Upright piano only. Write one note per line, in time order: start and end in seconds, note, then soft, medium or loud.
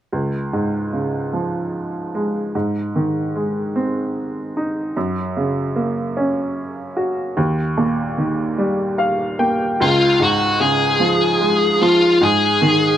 0.13 2.50 C#2 soft
0.53 2.10 G#2 soft
0.93 2.50 C#3 soft
1.33 2.50 F3 soft
2.15 2.53 G#3 soft
2.55 4.92 G#2 soft
2.96 4.52 D#3 soft
3.35 4.92 G#3 soft
3.76 4.93 C4 soft
4.57 4.95 D#4 soft
4.97 7.34 F#2 soft
5.37 6.93 C#3 soft
5.76 7.33 A#3 soft
6.17 7.34 C#4 soft
6.97 7.36 F#4 soft
7.37 9.75 D#2 soft
7.77 9.35 A#2 soft
8.18 9.75 D#3 soft
8.58 9.75 G3 soft
8.98 9.36 F5 soft
9.39 9.78 A#3 soft
9.39 9.76 G5 soft
9.80 12.17 C#2 soft
10.20 11.76 G#2 soft
10.60 12.17 C#3 soft
11.00 11.80 F3 soft
11.41 12.18 G#3 soft
11.81 12.20 F3 soft
12.21 12.97 G#2 soft
12.62 12.97 D#3 soft